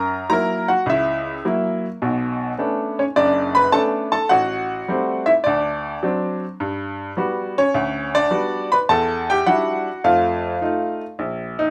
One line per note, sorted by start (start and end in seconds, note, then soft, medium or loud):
0.00 0.22 F#2 medium
0.00 0.26 A#4 medium
0.00 0.28 A#5 loud
0.29 0.70 F#3 soft
0.29 0.70 A#3 soft
0.29 0.70 E4 medium
0.29 0.67 A#4 medium
0.29 0.69 A#5 medium
0.68 0.86 F#4 medium
0.68 0.87 F#5 medium
0.86 1.36 C#2 medium
0.86 1.80 E5 medium
0.91 1.44 E4 medium
1.45 1.85 F#3 medium
1.45 1.85 A#3 soft
1.45 1.85 E4 medium
2.02 2.52 B1 medium
2.02 2.51 B2 medium
2.58 2.99 A3 soft
2.58 2.99 B3 soft
2.58 2.98 C#4 soft
2.58 2.99 D4 medium
2.99 3.04 C#4 medium
2.99 3.04 C#5 medium
3.16 3.66 F#1 medium
3.16 3.66 F#2 medium
3.16 3.53 D4 medium
3.16 3.52 D5 medium
3.55 3.73 B4 medium
3.55 3.72 B5 loud
3.72 4.14 A3 medium
3.72 4.14 B3 soft
3.72 4.14 C#4 soft
3.72 4.14 D4 medium
3.72 3.82 A4 medium
3.72 3.81 A5 loud
4.12 4.29 A4 medium
4.12 4.31 A5 medium
4.29 4.81 A1 medium
4.29 5.23 F#4 medium
4.29 5.29 F#5 medium
4.88 5.29 G3 medium
4.88 5.29 A3 soft
4.88 5.29 C4 medium
5.26 5.32 E4 medium
5.26 5.31 E5 medium
5.44 5.96 D2 medium
5.44 6.02 D4 medium
5.44 6.36 D5 medium
6.03 6.43 F#3 medium
6.03 6.44 C4 soft
6.03 6.44 D4 medium
6.60 7.10 G2 medium
7.17 7.57 G3 medium
7.17 7.58 B3 soft
7.17 7.58 F#4 medium
7.58 8.10 C#4 medium
7.58 8.16 C#5 medium
7.74 8.24 D2 medium
8.15 8.67 D4 medium
8.15 8.73 D5 loud
8.31 8.72 G3 medium
8.31 8.72 B3 soft
8.31 8.72 F#4 medium
8.72 8.78 B4 medium
8.72 8.77 B5 medium
8.89 9.39 E2 medium
8.89 9.26 A4 medium
8.89 9.29 A5 loud
9.30 9.47 G4 medium
9.30 9.48 G5 medium
9.46 9.87 G3 medium
9.46 9.87 D4 soft
9.46 9.88 E4 medium
9.46 10.01 F#4 medium
9.46 10.05 F#5 medium
10.04 10.54 F2 medium
10.04 10.54 A3 medium
10.04 10.61 F4 medium
10.04 10.96 F5 medium
10.62 11.02 A3 medium
10.62 11.02 D#4 soft
10.62 11.02 F4 medium
11.19 11.69 A#1 medium
11.59 11.70 D#4 medium